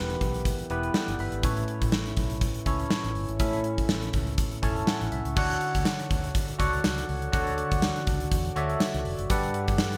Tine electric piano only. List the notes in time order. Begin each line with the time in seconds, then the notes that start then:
Already playing: E3 B3 E4 G4 A#4 B4
0.70 B3 E4 G4 B4
0.95 A4 D5 G5
1.20 B4 E5 B5
1.43 A2 C#4 E4 A4 C#5
2.66 C#4 E4 A4 C#5
3.40 A2 C#4 E4 A4 E5
4.62 C#4 E4 A4 C#5 A5
4.88 F#5
5.12 E5
5.36 D3 F#4 A4 C#5 D5 F#5
6.59 F#4 A4 C#5 D5 F#5
7.32 D3 F#4 A4 C#5 D5 F#5
8.56 F#4 A4 C#5 D5 E5
9.30 G2 G4 A4 B4 D5 F#5